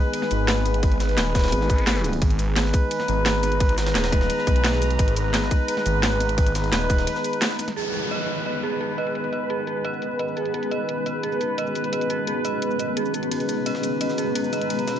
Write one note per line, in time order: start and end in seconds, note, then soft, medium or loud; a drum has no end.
0.00 7.73 D#3 medium
0.00 0.98 G#3 loud
0.00 7.73 B3 medium
0.00 0.98 D#4 loud
0.00 7.73 G#4 medium
0.00 0.98 B4 loud
0.00 2.19 B4 medium
0.14 closed hi-hat medium
0.14 ride medium
0.22 snare soft
0.31 1.16 G#1 loud
0.31 closed hi-hat medium
0.31 ride medium
0.31 cabasa medium
0.48 snare loud
0.48 closed hi-hat medium
0.48 ride medium
0.57 cabasa soft
0.66 snare soft
0.66 closed hi-hat medium
0.66 ride medium
0.66 cabasa medium
0.74 closed hi-hat soft
0.83 kick loud
0.83 closed hi-hat medium
0.83 ride medium
0.92 closed hi-hat soft
1.00 2.03 G#3 loud
1.00 2.03 D#4 medium
1.00 2.03 B4 loud
1.00 snare medium
1.00 closed hi-hat medium
1.00 ride medium
1.00 cabasa medium
1.09 ride soft
1.18 1.51 D#1 loud
1.18 snare loud
1.18 closed hi-hat medium
1.18 ride medium
1.26 cabasa soft
1.35 kick loud
1.35 snare medium
1.35 closed hi-hat medium
1.35 ride medium
1.35 cabasa medium
1.39 snare medium
1.39 ride medium
1.44 snare loud
1.44 ride medium
1.48 snare medium
1.48 ride medium
1.52 2.20 G#1 loud
1.52 closed hi-hat medium
1.52 ride medium
1.61 snare soft
1.70 kick loud
1.70 closed hi-hat medium
1.70 ride medium
1.70 cabasa medium
1.78 closed hi-hat soft
1.87 snare loud
1.87 closed hi-hat medium
1.87 ride medium
1.96 snare medium
1.96 cabasa soft
2.04 2.13 G#3 medium
2.04 2.13 D#4 medium
2.04 2.13 B4 medium
2.04 snare soft
2.04 closed hi-hat medium
2.04 ride medium
2.04 cabasa medium
2.13 closed hi-hat soft
2.13 ride soft
2.22 2.72 G#1 loud
2.22 7.74 A#5 medium
2.22 kick loud
2.22 closed hi-hat medium
2.22 ride medium
2.30 closed hi-hat soft
2.39 3.76 G#3 loud
2.39 3.76 D#4 medium
2.39 3.76 B4 loud
2.39 closed hi-hat medium
2.39 ride medium
2.39 cabasa medium
2.56 snare loud
2.56 closed hi-hat medium
2.56 ride medium
2.65 snare medium
2.74 kick loud
2.74 closed hi-hat medium
2.74 ride medium
2.74 cabasa medium
2.91 closed hi-hat medium
2.91 ride medium
3.00 snare soft
3.08 3.94 G#1 loud
3.08 closed hi-hat medium
3.08 ride medium
3.08 cabasa medium
3.26 snare loud
3.26 closed hi-hat medium
3.26 ride medium
3.34 cabasa soft
3.43 snare soft
3.43 closed hi-hat medium
3.43 ride medium
3.43 cabasa medium
3.52 closed hi-hat soft
3.60 kick loud
3.60 closed hi-hat medium
3.60 ride medium
3.69 closed hi-hat soft
3.78 5.14 G#3 loud
3.78 5.14 D#4 medium
3.78 5.14 B4 loud
3.78 snare loud
3.78 closed hi-hat medium
3.78 ride medium
3.78 cabasa medium
3.86 snare loud
3.86 ride medium
3.95 4.28 D#1 loud
3.95 snare loud
3.95 closed hi-hat medium
3.95 ride medium
4.04 snare loud
4.04 ride medium
4.04 cabasa soft
4.12 kick loud
4.12 snare medium
4.12 closed hi-hat medium
4.12 ride medium
4.12 cabasa medium
4.21 snare medium
4.30 closed hi-hat medium
4.30 ride medium
4.38 snare soft
4.47 4.98 B1 medium
4.47 kick loud
4.47 closed hi-hat medium
4.47 ride medium
4.47 cabasa medium
4.56 closed hi-hat soft
4.64 snare loud
4.64 closed hi-hat medium
4.64 ride medium
4.73 snare medium
4.73 cabasa soft
4.82 snare soft
4.82 closed hi-hat medium
4.82 ride medium
4.82 cabasa medium
4.90 closed hi-hat soft
4.90 ride soft
4.99 5.50 G#1 medium
4.99 kick loud
4.99 closed hi-hat loud
4.99 ride medium
5.08 closed hi-hat soft
5.16 6.53 G#3 medium
5.16 6.53 D#4 medium
5.16 6.53 B4 loud
5.16 closed hi-hat medium
5.16 ride medium
5.16 cabasa medium
5.34 snare loud
5.34 closed hi-hat medium
5.34 ride medium
5.42 snare medium
5.51 kick loud
5.51 closed hi-hat medium
5.51 ride medium
5.51 cabasa medium
5.68 closed hi-hat medium
5.68 ride medium
5.77 snare soft
5.86 6.71 G#1 loud
5.86 closed hi-hat medium
5.86 ride medium
5.86 cabasa medium
6.03 snare loud
6.03 closed hi-hat loud
6.03 ride medium
6.12 cabasa soft
6.20 snare soft
6.20 closed hi-hat medium
6.20 ride medium
6.20 cabasa medium
6.29 closed hi-hat soft
6.38 kick loud
6.38 closed hi-hat loud
6.38 ride medium
6.46 closed hi-hat soft
6.46 cabasa soft
6.55 7.57 G#3 medium
6.55 7.57 D#4 medium
6.55 7.58 B4 loud
6.55 snare medium
6.55 closed hi-hat medium
6.55 ride medium
6.55 cabasa medium
6.64 ride soft
6.72 7.06 D#1 loud
6.72 snare loud
6.72 closed hi-hat loud
6.72 ride medium
6.81 cabasa soft
6.90 kick loud
6.90 snare medium
6.90 closed hi-hat medium
6.90 ride medium
6.90 cabasa medium
6.98 snare medium
6.98 closed hi-hat soft
7.07 snare soft
7.07 closed hi-hat medium
7.07 ride loud
7.16 snare soft
7.16 cabasa soft
7.24 closed hi-hat medium
7.24 ride medium
7.24 cabasa medium
7.33 closed hi-hat soft
7.42 snare loud
7.42 closed hi-hat loud
7.42 ride medium
7.50 snare medium
7.50 cabasa soft
7.59 7.67 G#3 medium
7.59 7.67 D#4 medium
7.59 7.67 B4 medium
7.59 snare soft
7.59 closed hi-hat medium
7.59 ride medium
7.59 cabasa medium
7.68 snare medium
7.68 closed hi-hat soft
7.68 ride soft
7.76 14.99 D#3 medium
7.76 10.37 G#3 medium
7.76 14.99 G#3 medium
7.76 14.99 B3 medium
7.76 10.37 D#4 medium
7.76 7.92 G#4 medium
7.76 14.99 G#4 medium
7.76 10.37 B4 medium
7.76 13.29 B4 medium
7.76 closed hi-hat medium
7.76 downlifter medium
7.85 14.99 C#4 medium
7.85 closed hi-hat soft
7.94 8.00 G#4 medium
7.94 14.99 D#5 medium
7.94 closed hi-hat medium
8.11 14.99 B3 medium
8.11 8.18 D#5 loud
8.11 closed hi-hat medium
8.29 closed hi-hat medium
8.34 14.99 F#4 medium
8.46 8.52 D#5 medium
8.46 closed hi-hat medium
8.63 8.79 G#4 medium
8.63 closed hi-hat medium
8.63 cabasa medium
8.81 8.87 G#4 medium
8.81 closed hi-hat medium
8.89 cabasa soft
8.98 9.04 D#5 medium
8.98 closed hi-hat medium
8.98 cabasa medium
9.07 closed hi-hat soft
9.15 closed hi-hat medium
9.24 closed hi-hat soft
9.24 cabasa soft
9.33 9.39 D#5 medium
9.33 closed hi-hat medium
9.33 cabasa medium
9.50 9.66 G#4 medium
9.50 closed hi-hat medium
9.67 9.74 G#4 medium
9.67 closed hi-hat medium
9.67 cabasa medium
9.85 9.91 D#5 medium
9.85 closed hi-hat medium
9.93 cabasa soft
10.02 closed hi-hat medium
10.02 cabasa medium
10.19 10.26 D#5 medium
10.19 closed hi-hat medium
10.28 cabasa soft
10.37 10.52 G#4 medium
10.37 closed hi-hat medium
10.37 cabasa soft
10.45 closed hi-hat soft
10.54 13.29 G#3 medium
10.54 13.29 D#4 medium
10.54 10.60 G#4 medium
10.54 13.29 B4 loud
10.54 closed hi-hat medium
10.63 closed hi-hat soft
10.63 cabasa soft
10.71 10.78 D#5 medium
10.71 closed hi-hat medium
10.71 cabasa medium
10.89 closed hi-hat medium
11.06 11.12 D#5 medium
11.06 closed hi-hat medium
11.06 cabasa medium
11.23 11.39 G#4 medium
11.23 closed hi-hat medium
11.32 cabasa soft
11.41 11.47 G#4 medium
11.41 closed hi-hat medium
11.41 cabasa medium
11.58 11.64 D#5 medium
11.58 closed hi-hat medium
11.67 cabasa soft
11.75 closed hi-hat medium
11.75 cabasa soft
11.84 closed hi-hat soft
11.93 11.99 D#5 medium
11.93 closed hi-hat medium
12.01 closed hi-hat soft
12.01 cabasa soft
12.10 12.26 G#4 medium
12.10 closed hi-hat medium
12.10 cabasa medium
12.27 12.34 G#4 medium
12.27 closed hi-hat medium
12.45 12.51 D#5 loud
12.45 closed hi-hat medium
12.45 cabasa medium
12.62 closed hi-hat medium
12.71 cabasa soft
12.79 12.86 D#5 medium
12.79 closed hi-hat medium
12.79 cabasa medium
12.97 13.13 G#4 medium
12.97 closed hi-hat medium
13.05 cabasa soft
13.14 13.20 G#4 medium
13.14 closed hi-hat medium
13.14 cabasa soft
13.23 closed hi-hat soft
13.31 14.99 G#3 medium
13.31 14.99 D#4 medium
13.31 13.47 G#4 medium
13.31 14.99 B4 loud
13.31 14.99 A#5 medium
13.31 closed hi-hat medium
13.31 ride medium
13.40 closed hi-hat soft
13.40 cabasa soft
13.49 13.55 G#4 medium
13.49 closed hi-hat medium
13.49 ride medium
13.49 cabasa medium
13.66 13.72 D#5 loud
13.66 closed hi-hat medium
13.66 ride medium
13.75 snare medium
13.83 closed hi-hat medium
13.83 ride medium
13.83 cabasa medium
14.01 14.07 D#5 medium
14.01 closed hi-hat medium
14.01 ride medium
14.09 snare soft
14.09 cabasa soft
14.18 14.34 G#4 medium
14.18 closed hi-hat medium
14.18 ride medium
14.18 cabasa medium
14.35 14.42 G#4 medium
14.35 closed hi-hat medium
14.35 ride medium
14.44 cabasa soft
14.53 14.59 D#5 medium
14.53 closed hi-hat medium
14.53 ride medium
14.53 cabasa medium
14.61 closed hi-hat soft
14.70 closed hi-hat medium
14.70 ride medium
14.79 closed hi-hat soft
14.79 cabasa soft
14.88 14.94 D#5 medium
14.88 snare medium
14.88 closed hi-hat medium
14.88 ride medium
14.88 cabasa medium
14.96 ride soft